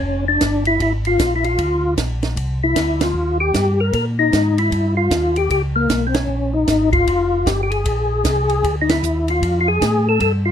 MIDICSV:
0, 0, Header, 1, 4, 480
1, 0, Start_track
1, 0, Tempo, 391901
1, 18, Time_signature, 4, 2, 24, 8
1, 12879, End_track
2, 0, Start_track
2, 0, Title_t, "Tonewheel organ"
2, 0, Program_c, 0, 16
2, 0, Note_on_c, 0, 61, 70
2, 302, Note_off_c, 0, 61, 0
2, 346, Note_on_c, 0, 62, 98
2, 781, Note_off_c, 0, 62, 0
2, 822, Note_on_c, 0, 64, 80
2, 989, Note_off_c, 0, 64, 0
2, 1004, Note_on_c, 0, 64, 90
2, 1135, Note_off_c, 0, 64, 0
2, 1309, Note_on_c, 0, 65, 102
2, 1640, Note_off_c, 0, 65, 0
2, 1661, Note_on_c, 0, 64, 58
2, 1766, Note_off_c, 0, 64, 0
2, 1774, Note_on_c, 0, 65, 86
2, 2377, Note_off_c, 0, 65, 0
2, 3227, Note_on_c, 0, 64, 85
2, 3699, Note_on_c, 0, 65, 69
2, 3708, Note_off_c, 0, 64, 0
2, 4137, Note_off_c, 0, 65, 0
2, 4169, Note_on_c, 0, 67, 91
2, 4659, Note_off_c, 0, 67, 0
2, 4659, Note_on_c, 0, 70, 71
2, 4815, Note_off_c, 0, 70, 0
2, 4830, Note_on_c, 0, 70, 75
2, 4964, Note_off_c, 0, 70, 0
2, 5132, Note_on_c, 0, 63, 84
2, 5621, Note_off_c, 0, 63, 0
2, 5622, Note_on_c, 0, 64, 73
2, 6059, Note_off_c, 0, 64, 0
2, 6087, Note_on_c, 0, 65, 84
2, 6579, Note_off_c, 0, 65, 0
2, 6581, Note_on_c, 0, 67, 74
2, 6737, Note_off_c, 0, 67, 0
2, 6751, Note_on_c, 0, 67, 76
2, 6885, Note_off_c, 0, 67, 0
2, 7052, Note_on_c, 0, 58, 77
2, 7429, Note_off_c, 0, 58, 0
2, 7434, Note_on_c, 0, 60, 58
2, 7524, Note_on_c, 0, 61, 72
2, 7533, Note_off_c, 0, 60, 0
2, 8002, Note_on_c, 0, 63, 82
2, 8018, Note_off_c, 0, 61, 0
2, 8449, Note_off_c, 0, 63, 0
2, 8485, Note_on_c, 0, 65, 81
2, 9144, Note_on_c, 0, 67, 75
2, 9159, Note_off_c, 0, 65, 0
2, 9323, Note_off_c, 0, 67, 0
2, 9345, Note_on_c, 0, 67, 62
2, 9439, Note_on_c, 0, 68, 89
2, 9449, Note_off_c, 0, 67, 0
2, 10723, Note_off_c, 0, 68, 0
2, 10797, Note_on_c, 0, 63, 56
2, 10895, Note_off_c, 0, 63, 0
2, 10903, Note_on_c, 0, 64, 82
2, 11388, Note_off_c, 0, 64, 0
2, 11393, Note_on_c, 0, 65, 79
2, 11752, Note_off_c, 0, 65, 0
2, 11767, Note_on_c, 0, 65, 61
2, 11858, Note_on_c, 0, 68, 97
2, 11860, Note_off_c, 0, 65, 0
2, 12345, Note_off_c, 0, 68, 0
2, 12354, Note_on_c, 0, 69, 81
2, 12493, Note_off_c, 0, 69, 0
2, 12508, Note_on_c, 0, 69, 81
2, 12643, Note_off_c, 0, 69, 0
2, 12805, Note_on_c, 0, 65, 86
2, 12879, Note_off_c, 0, 65, 0
2, 12879, End_track
3, 0, Start_track
3, 0, Title_t, "Tonewheel organ"
3, 0, Program_c, 1, 16
3, 13, Note_on_c, 1, 29, 74
3, 481, Note_off_c, 1, 29, 0
3, 498, Note_on_c, 1, 31, 73
3, 963, Note_off_c, 1, 31, 0
3, 978, Note_on_c, 1, 32, 75
3, 1443, Note_off_c, 1, 32, 0
3, 1458, Note_on_c, 1, 34, 76
3, 1923, Note_off_c, 1, 34, 0
3, 1943, Note_on_c, 1, 38, 72
3, 2405, Note_off_c, 1, 38, 0
3, 2423, Note_on_c, 1, 34, 75
3, 2885, Note_off_c, 1, 34, 0
3, 2896, Note_on_c, 1, 36, 69
3, 3362, Note_off_c, 1, 36, 0
3, 3378, Note_on_c, 1, 38, 78
3, 3842, Note_off_c, 1, 38, 0
3, 3849, Note_on_c, 1, 39, 68
3, 4318, Note_off_c, 1, 39, 0
3, 4335, Note_on_c, 1, 43, 76
3, 4801, Note_off_c, 1, 43, 0
3, 4814, Note_on_c, 1, 46, 75
3, 5281, Note_off_c, 1, 46, 0
3, 5297, Note_on_c, 1, 44, 74
3, 5762, Note_off_c, 1, 44, 0
3, 5775, Note_on_c, 1, 43, 73
3, 6242, Note_off_c, 1, 43, 0
3, 6254, Note_on_c, 1, 39, 70
3, 6721, Note_off_c, 1, 39, 0
3, 6737, Note_on_c, 1, 37, 71
3, 7203, Note_off_c, 1, 37, 0
3, 7219, Note_on_c, 1, 35, 78
3, 7684, Note_off_c, 1, 35, 0
3, 7686, Note_on_c, 1, 34, 72
3, 8157, Note_off_c, 1, 34, 0
3, 8176, Note_on_c, 1, 32, 78
3, 8643, Note_off_c, 1, 32, 0
3, 8660, Note_on_c, 1, 29, 70
3, 9125, Note_off_c, 1, 29, 0
3, 9141, Note_on_c, 1, 31, 79
3, 9605, Note_off_c, 1, 31, 0
3, 9622, Note_on_c, 1, 34, 69
3, 10086, Note_off_c, 1, 34, 0
3, 10097, Note_on_c, 1, 36, 73
3, 10564, Note_off_c, 1, 36, 0
3, 10577, Note_on_c, 1, 38, 69
3, 11044, Note_off_c, 1, 38, 0
3, 11057, Note_on_c, 1, 39, 79
3, 11524, Note_off_c, 1, 39, 0
3, 11534, Note_on_c, 1, 41, 70
3, 12002, Note_off_c, 1, 41, 0
3, 12018, Note_on_c, 1, 45, 73
3, 12484, Note_off_c, 1, 45, 0
3, 12496, Note_on_c, 1, 43, 77
3, 12879, Note_off_c, 1, 43, 0
3, 12879, End_track
4, 0, Start_track
4, 0, Title_t, "Drums"
4, 499, Note_on_c, 9, 44, 49
4, 499, Note_on_c, 9, 51, 57
4, 501, Note_on_c, 9, 38, 54
4, 502, Note_on_c, 9, 36, 18
4, 622, Note_off_c, 9, 44, 0
4, 622, Note_off_c, 9, 51, 0
4, 623, Note_off_c, 9, 38, 0
4, 624, Note_off_c, 9, 36, 0
4, 799, Note_on_c, 9, 51, 33
4, 921, Note_off_c, 9, 51, 0
4, 982, Note_on_c, 9, 36, 16
4, 982, Note_on_c, 9, 51, 51
4, 1105, Note_off_c, 9, 36, 0
4, 1105, Note_off_c, 9, 51, 0
4, 1284, Note_on_c, 9, 51, 38
4, 1406, Note_off_c, 9, 51, 0
4, 1463, Note_on_c, 9, 36, 23
4, 1463, Note_on_c, 9, 44, 57
4, 1463, Note_on_c, 9, 51, 55
4, 1464, Note_on_c, 9, 38, 52
4, 1585, Note_off_c, 9, 44, 0
4, 1585, Note_off_c, 9, 51, 0
4, 1586, Note_off_c, 9, 36, 0
4, 1586, Note_off_c, 9, 38, 0
4, 1767, Note_on_c, 9, 51, 37
4, 1890, Note_off_c, 9, 51, 0
4, 1942, Note_on_c, 9, 51, 51
4, 1943, Note_on_c, 9, 36, 19
4, 2064, Note_off_c, 9, 51, 0
4, 2066, Note_off_c, 9, 36, 0
4, 2420, Note_on_c, 9, 44, 49
4, 2420, Note_on_c, 9, 51, 53
4, 2421, Note_on_c, 9, 38, 55
4, 2423, Note_on_c, 9, 36, 20
4, 2542, Note_off_c, 9, 44, 0
4, 2542, Note_off_c, 9, 51, 0
4, 2544, Note_off_c, 9, 38, 0
4, 2545, Note_off_c, 9, 36, 0
4, 2728, Note_on_c, 9, 51, 35
4, 2729, Note_on_c, 9, 38, 43
4, 2850, Note_off_c, 9, 51, 0
4, 2851, Note_off_c, 9, 38, 0
4, 2901, Note_on_c, 9, 36, 20
4, 2904, Note_on_c, 9, 51, 48
4, 3024, Note_off_c, 9, 36, 0
4, 3026, Note_off_c, 9, 51, 0
4, 3379, Note_on_c, 9, 44, 47
4, 3379, Note_on_c, 9, 51, 61
4, 3380, Note_on_c, 9, 36, 18
4, 3381, Note_on_c, 9, 38, 56
4, 3502, Note_off_c, 9, 44, 0
4, 3502, Note_off_c, 9, 51, 0
4, 3503, Note_off_c, 9, 36, 0
4, 3503, Note_off_c, 9, 38, 0
4, 3684, Note_on_c, 9, 51, 59
4, 3686, Note_on_c, 9, 38, 66
4, 3807, Note_off_c, 9, 51, 0
4, 3808, Note_off_c, 9, 38, 0
4, 4338, Note_on_c, 9, 36, 17
4, 4339, Note_on_c, 9, 44, 51
4, 4339, Note_on_c, 9, 51, 55
4, 4341, Note_on_c, 9, 38, 55
4, 4461, Note_off_c, 9, 36, 0
4, 4462, Note_off_c, 9, 44, 0
4, 4462, Note_off_c, 9, 51, 0
4, 4463, Note_off_c, 9, 38, 0
4, 4816, Note_on_c, 9, 36, 18
4, 4817, Note_on_c, 9, 51, 46
4, 4939, Note_off_c, 9, 36, 0
4, 4940, Note_off_c, 9, 51, 0
4, 5299, Note_on_c, 9, 36, 16
4, 5304, Note_on_c, 9, 44, 49
4, 5304, Note_on_c, 9, 51, 53
4, 5305, Note_on_c, 9, 38, 53
4, 5421, Note_off_c, 9, 36, 0
4, 5426, Note_off_c, 9, 44, 0
4, 5426, Note_off_c, 9, 51, 0
4, 5427, Note_off_c, 9, 38, 0
4, 5610, Note_on_c, 9, 51, 39
4, 5733, Note_off_c, 9, 51, 0
4, 5778, Note_on_c, 9, 36, 17
4, 5782, Note_on_c, 9, 51, 51
4, 5900, Note_off_c, 9, 36, 0
4, 5905, Note_off_c, 9, 51, 0
4, 6259, Note_on_c, 9, 36, 19
4, 6261, Note_on_c, 9, 44, 52
4, 6261, Note_on_c, 9, 51, 60
4, 6262, Note_on_c, 9, 38, 56
4, 6382, Note_off_c, 9, 36, 0
4, 6383, Note_off_c, 9, 44, 0
4, 6383, Note_off_c, 9, 51, 0
4, 6384, Note_off_c, 9, 38, 0
4, 6566, Note_on_c, 9, 51, 37
4, 6688, Note_off_c, 9, 51, 0
4, 6740, Note_on_c, 9, 36, 17
4, 6741, Note_on_c, 9, 51, 49
4, 6862, Note_off_c, 9, 36, 0
4, 6864, Note_off_c, 9, 51, 0
4, 7220, Note_on_c, 9, 36, 23
4, 7223, Note_on_c, 9, 44, 49
4, 7223, Note_on_c, 9, 51, 52
4, 7224, Note_on_c, 9, 38, 58
4, 7343, Note_off_c, 9, 36, 0
4, 7345, Note_off_c, 9, 44, 0
4, 7345, Note_off_c, 9, 51, 0
4, 7346, Note_off_c, 9, 38, 0
4, 7526, Note_on_c, 9, 51, 61
4, 7527, Note_on_c, 9, 38, 69
4, 7648, Note_off_c, 9, 51, 0
4, 7649, Note_off_c, 9, 38, 0
4, 8177, Note_on_c, 9, 44, 55
4, 8177, Note_on_c, 9, 51, 54
4, 8178, Note_on_c, 9, 38, 57
4, 8179, Note_on_c, 9, 36, 16
4, 8299, Note_off_c, 9, 44, 0
4, 8299, Note_off_c, 9, 51, 0
4, 8300, Note_off_c, 9, 38, 0
4, 8302, Note_off_c, 9, 36, 0
4, 8485, Note_on_c, 9, 36, 40
4, 8485, Note_on_c, 9, 51, 36
4, 8607, Note_off_c, 9, 51, 0
4, 8608, Note_off_c, 9, 36, 0
4, 8661, Note_on_c, 9, 36, 23
4, 8665, Note_on_c, 9, 51, 50
4, 8784, Note_off_c, 9, 36, 0
4, 8787, Note_off_c, 9, 51, 0
4, 9142, Note_on_c, 9, 36, 23
4, 9147, Note_on_c, 9, 44, 49
4, 9147, Note_on_c, 9, 51, 53
4, 9148, Note_on_c, 9, 38, 53
4, 9265, Note_off_c, 9, 36, 0
4, 9270, Note_off_c, 9, 44, 0
4, 9270, Note_off_c, 9, 51, 0
4, 9271, Note_off_c, 9, 38, 0
4, 9450, Note_on_c, 9, 51, 39
4, 9572, Note_off_c, 9, 51, 0
4, 9621, Note_on_c, 9, 51, 56
4, 9622, Note_on_c, 9, 36, 24
4, 9743, Note_off_c, 9, 51, 0
4, 9745, Note_off_c, 9, 36, 0
4, 10100, Note_on_c, 9, 36, 22
4, 10101, Note_on_c, 9, 44, 48
4, 10101, Note_on_c, 9, 51, 61
4, 10102, Note_on_c, 9, 38, 56
4, 10223, Note_off_c, 9, 36, 0
4, 10224, Note_off_c, 9, 44, 0
4, 10224, Note_off_c, 9, 51, 0
4, 10225, Note_off_c, 9, 38, 0
4, 10404, Note_on_c, 9, 51, 36
4, 10527, Note_off_c, 9, 51, 0
4, 10582, Note_on_c, 9, 36, 21
4, 10586, Note_on_c, 9, 51, 48
4, 10704, Note_off_c, 9, 36, 0
4, 10709, Note_off_c, 9, 51, 0
4, 10893, Note_on_c, 9, 51, 58
4, 10894, Note_on_c, 9, 38, 68
4, 11015, Note_off_c, 9, 51, 0
4, 11017, Note_off_c, 9, 38, 0
4, 11062, Note_on_c, 9, 44, 51
4, 11185, Note_off_c, 9, 44, 0
4, 11367, Note_on_c, 9, 51, 39
4, 11489, Note_off_c, 9, 51, 0
4, 11541, Note_on_c, 9, 36, 18
4, 11546, Note_on_c, 9, 51, 51
4, 11664, Note_off_c, 9, 36, 0
4, 11669, Note_off_c, 9, 51, 0
4, 12020, Note_on_c, 9, 36, 18
4, 12025, Note_on_c, 9, 44, 56
4, 12025, Note_on_c, 9, 51, 58
4, 12027, Note_on_c, 9, 38, 53
4, 12143, Note_off_c, 9, 36, 0
4, 12148, Note_off_c, 9, 44, 0
4, 12148, Note_off_c, 9, 51, 0
4, 12149, Note_off_c, 9, 38, 0
4, 12497, Note_on_c, 9, 51, 51
4, 12499, Note_on_c, 9, 36, 19
4, 12619, Note_off_c, 9, 51, 0
4, 12621, Note_off_c, 9, 36, 0
4, 12879, End_track
0, 0, End_of_file